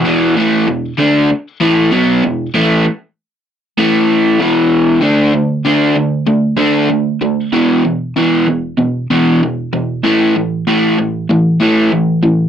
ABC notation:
X:1
M:4/4
L:1/8
Q:1/4=96
K:D
V:1 name="Overdriven electric guitar" clef=bass
[E,,B,,E,] [A,,E,A,] [E,,B,,] [D,A,D] z [A,,E,A,] [B,,F,B,] [E,,B,,] | [A,,E,A,] z3 [A,,E,A,]2 [E,,B,,E,]2 | [D,A,D] [D,A,] [D,A,D] [D,A,] [D,A,] [D,A,D] [D,A,] [D,A,] | [E,,B,,E,] [E,,B,,] [E,,B,,E,] [E,,B,,] [E,,B,,] [E,,B,,E,] [E,,B,,] [E,,B,,] |
[A,,E,A,] [A,,E,] [A,,E,A,] [A,,E,] [A,,E,] [A,,E,A,] [A,,E,] [A,,E,] |]